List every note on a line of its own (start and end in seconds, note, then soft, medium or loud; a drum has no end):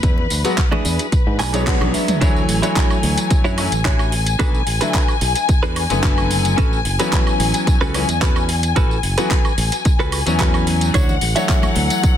0.00 0.26 E2 loud
0.00 2.23 B4 medium
0.00 kick loud
0.00 closed hi-hat medium
0.00 tambourine soft
0.18 low conga medium
0.30 0.42 D2 medium
0.30 open hi-hat loud
0.30 tambourine medium
0.44 0.57 F#3 medium
0.44 0.57 G#3 medium
0.44 0.57 B3 medium
0.44 0.58 F#4 loud
0.44 closed hi-hat medium
0.44 tambourine soft
0.58 muted clean electric guitar stroke soft
0.58 kick loud
0.58 clap loud
0.58 closed hi-hat medium
0.58 tambourine soft
0.71 1.06 D4 medium
0.71 1.06 E4 medium
0.71 1.06 G#4 loud
0.71 high conga medium
0.71 low conga medium
0.71 high woodblock medium
0.85 0.97 E2 medium
0.85 open hi-hat loud
0.85 tambourine medium
0.99 closed hi-hat medium
0.99 tambourine soft
1.12 kick loud
1.12 closed hi-hat medium
1.12 tambourine soft
1.12 swell medium
1.27 1.39 G#2 medium
1.39 1.77 B1 medium
1.39 1.65 G#5 medium
1.39 muted clean electric guitar stroke loud
1.39 clap medium
1.39 open hi-hat loud
1.39 tambourine medium
1.39 high conga medium
1.39 high woodblock medium
1.53 2.19 F#3 medium
1.53 2.20 G#3 medium
1.53 2.20 B3 medium
1.53 1.67 D4 loud
1.53 1.67 E4 medium
1.53 1.67 G#4 loud
1.53 2.20 C#5 loud
1.53 closed hi-hat medium
1.53 tambourine soft
1.67 1.92 F#5 medium
1.67 kick loud
1.67 clap loud
1.67 closed hi-hat medium
1.67 high tom medium
1.67 tambourine soft
1.80 1.92 B1 medium
1.80 1.94 D4 medium
1.80 1.94 E4 medium
1.80 1.94 G#4 loud
1.80 high tom medium
1.80 low conga medium
1.80 high woodblock medium
1.94 2.20 E5 medium
1.94 open hi-hat loud
1.94 tambourine medium
2.08 muted clean electric guitar stroke soft
2.08 closed hi-hat medium
2.08 mid tom medium
2.08 tambourine soft
2.08 high conga medium
2.21 2.44 D2 loud
2.21 2.57 E3 loud
2.21 2.57 F#3 medium
2.21 2.58 A3 medium
2.21 2.42 D4 loud
2.21 2.42 E4 medium
2.21 2.42 F#4 loud
2.21 2.42 C#5 loud
2.21 2.58 C#5 loud
2.21 10.95 G#5 medium
2.21 kick loud
2.21 closed hi-hat medium
2.21 tambourine medium
2.36 tambourine soft
2.49 2.61 A1 medium
2.49 open hi-hat loud
2.62 3.54 E3 medium
2.62 3.55 F#3 medium
2.62 3.55 A3 medium
2.62 2.97 D4 medium
2.62 2.97 E4 medium
2.62 2.97 F#4 medium
2.62 2.97 C#5 medium
2.62 3.55 C#5 loud
2.62 closed hi-hat medium
2.62 tambourine medium
2.76 kick loud
2.76 clap loud
2.76 closed hi-hat medium
2.76 tambourine medium
2.90 tambourine soft
2.90 high woodblock medium
3.03 3.15 D2 medium
3.03 open hi-hat loud
3.18 closed hi-hat medium
3.18 tambourine medium
3.30 muted clean electric guitar stroke soft
3.30 muted fingered electric bass stroke soft
3.30 kick loud
3.30 closed hi-hat medium
3.30 tambourine medium
3.44 3.67 F#2 loud
3.44 3.65 D4 loud
3.44 3.65 E4 loud
3.44 3.65 F#4 loud
3.44 3.65 C#5 loud
3.44 tambourine soft
3.58 3.66 E3 medium
3.58 3.67 F#3 medium
3.58 3.67 A3 medium
3.58 3.67 C#4 loud
3.58 open hi-hat loud
3.58 high woodblock medium
3.72 4.36 A1 medium
3.72 closed hi-hat medium
3.72 tambourine medium
3.85 4.12 D4 medium
3.85 4.12 E4 medium
3.85 4.12 F#4 medium
3.85 4.12 C#5 loud
3.85 kick loud
3.85 clap loud
3.85 closed hi-hat medium
3.85 tambourine medium
3.99 tambourine soft
3.99 high woodblock medium
4.12 open hi-hat loud
4.26 closed hi-hat medium
4.26 tambourine medium
4.39 4.63 B1 loud
4.39 4.60 D4 loud
4.39 4.60 F#4 medium
4.39 4.60 A4 loud
4.39 4.61 B4 loud
4.39 kick loud
4.39 closed hi-hat medium
4.39 tambourine medium
4.54 tambourine soft
4.67 4.79 A1 medium
4.67 open hi-hat loud
4.81 4.94 D3 medium
4.81 4.94 F#3 medium
4.81 4.94 A3 medium
4.81 5.15 D4 medium
4.81 4.94 E4 loud
4.81 5.15 F#4 medium
4.81 5.15 A4 medium
4.81 5.15 B4 loud
4.81 closed hi-hat medium
4.81 tambourine medium
4.94 kick loud
4.94 clap loud
4.94 closed hi-hat medium
4.94 tambourine medium
5.08 tambourine soft
5.08 high woodblock medium
5.21 5.33 B1 medium
5.21 open hi-hat loud
5.36 closed hi-hat medium
5.36 tambourine medium
5.48 muted clean electric guitar stroke soft
5.48 kick loud
5.48 closed hi-hat medium
5.48 tambourine medium
5.63 5.85 E2 loud
5.63 5.83 D4 loud
5.63 5.83 F#4 loud
5.63 5.83 A4 loud
5.63 5.83 B4 loud
5.63 tambourine soft
5.76 open hi-hat loud
5.76 high woodblock medium
5.90 6.54 F#1 medium
5.90 6.56 D3 loud
5.90 6.56 F#3 medium
5.90 6.57 A3 medium
5.90 6.57 B3 loud
5.90 closed hi-hat medium
5.90 tambourine medium
6.03 6.30 D4 medium
6.03 6.30 F#4 medium
6.03 6.31 A4 medium
6.03 6.31 B4 medium
6.03 kick loud
6.03 clap loud
6.03 closed hi-hat medium
6.03 tambourine medium
6.18 tambourine soft
6.18 high woodblock medium
6.31 open hi-hat loud
6.45 closed hi-hat medium
6.45 tambourine medium
6.57 6.81 A1 loud
6.57 6.79 C#4 loud
6.57 6.79 F#4 loud
6.57 6.79 A4 loud
6.57 6.79 B4 loud
6.57 kick loud
6.57 closed hi-hat medium
6.57 tambourine medium
6.73 tambourine soft
6.85 6.97 F#1 medium
6.85 open hi-hat loud
6.99 7.91 E3 medium
6.99 7.91 F#3 medium
6.99 7.92 B3 medium
6.99 7.33 C#4 medium
6.99 7.92 C#4 loud
6.99 7.33 F#4 medium
6.99 7.33 A4 medium
6.99 7.33 B4 loud
6.99 closed hi-hat medium
6.99 tambourine medium
7.13 kick loud
7.13 clap loud
7.13 closed hi-hat medium
7.13 tambourine medium
7.27 tambourine soft
7.27 high woodblock medium
7.40 7.52 A1 medium
7.40 open hi-hat loud
7.54 closed hi-hat medium
7.54 tambourine medium
7.67 muted clean electric guitar stroke soft
7.67 muted fingered electric bass stroke soft
7.67 kick loud
7.67 closed hi-hat medium
7.67 tambourine medium
7.81 8.04 C#2 loud
7.81 8.01 C#4 loud
7.81 8.01 F#4 loud
7.81 8.01 A4 loud
7.81 8.01 B4 loud
7.81 tambourine soft
7.94 8.03 E3 medium
7.94 8.03 F#3 medium
7.94 8.03 B3 medium
7.94 8.03 C#4 loud
7.94 open hi-hat loud
7.94 high woodblock medium
8.08 8.72 E2 medium
8.08 closed hi-hat medium
8.08 tambourine medium
8.21 8.49 C#4 medium
8.21 8.49 F#4 medium
8.21 8.49 A4 medium
8.21 8.49 B4 loud
8.21 kick loud
8.21 clap loud
8.21 closed hi-hat medium
8.21 tambourine medium
8.36 tambourine soft
8.36 high woodblock medium
8.49 open hi-hat loud
8.63 closed hi-hat medium
8.63 tambourine medium
8.76 8.99 A1 loud
8.76 8.97 C#4 loud
8.76 8.97 F#4 loud
8.76 8.97 A4 loud
8.76 8.97 B4 loud
8.76 kick loud
8.76 closed hi-hat soft
8.76 tambourine medium
8.91 tambourine soft
9.03 9.15 F#1 medium
9.03 open hi-hat loud
9.17 9.30 E3 medium
9.17 9.30 F#3 medium
9.17 9.30 B3 medium
9.17 9.51 C#4 medium
9.17 9.30 F#4 loud
9.17 9.52 F#4 medium
9.17 9.52 A4 medium
9.17 9.52 B4 loud
9.17 closed hi-hat medium
9.17 tambourine medium
9.31 kick loud
9.31 clap loud
9.31 closed hi-hat medium
9.31 tambourine medium
9.45 tambourine soft
9.45 high woodblock medium
9.58 9.70 A1 medium
9.58 open hi-hat loud
9.72 closed hi-hat medium
9.72 tambourine medium
9.85 muted clean electric guitar stroke soft
9.85 kick loud
9.85 closed hi-hat soft
9.85 tambourine medium
9.99 10.22 C#2 medium
9.99 10.20 C#4 medium
9.99 10.20 F#4 loud
9.99 10.20 A4 loud
9.99 10.20 B4 loud
9.99 tambourine soft
10.12 open hi-hat loud
10.12 high woodblock medium
10.26 10.91 E2 medium
10.26 10.92 E3 medium
10.26 10.93 F#3 medium
10.26 10.93 B3 medium
10.26 10.93 C#4 loud
10.26 closed hi-hat medium
10.26 tambourine medium
10.39 10.67 C#4 medium
10.39 10.67 F#4 medium
10.39 10.67 A4 medium
10.39 10.67 B4 loud
10.39 kick loud
10.39 clap loud
10.39 closed hi-hat medium
10.39 tambourine medium
10.54 tambourine soft
10.54 high woodblock medium
10.67 open hi-hat loud
10.81 closed hi-hat medium
10.81 tambourine medium
10.94 11.17 D2 loud
10.94 11.15 D4 loud
10.94 11.15 E4 loud
10.94 11.15 F#4 medium
10.94 11.15 C#5 loud
10.94 12.17 F#5 medium
10.94 kick loud
10.94 closed hi-hat medium
10.94 tambourine medium
11.09 tambourine soft
11.09 low conga medium
11.21 11.33 A1 medium
11.21 open hi-hat loud
11.21 muted conga medium
11.35 12.17 E3 medium
11.35 12.17 F#3 medium
11.35 12.17 A3 medium
11.35 11.70 D4 medium
11.35 11.70 E4 medium
11.35 11.70 F#4 medium
11.35 12.17 C#5 loud
11.35 11.70 E5 loud
11.35 closed hi-hat medium
11.35 tambourine medium
11.49 kick loud
11.49 clap loud
11.49 closed hi-hat medium
11.49 tambourine medium
11.63 tambourine soft
11.63 high conga medium
11.63 high woodblock medium
11.76 11.88 D2 medium
11.76 open hi-hat loud
11.76 muted conga medium
11.90 closed hi-hat medium
11.90 tambourine medium
12.03 muted clean electric guitar stroke soft
12.03 muted fingered electric bass stroke soft
12.03 kick loud
12.03 closed hi-hat medium
12.03 tambourine medium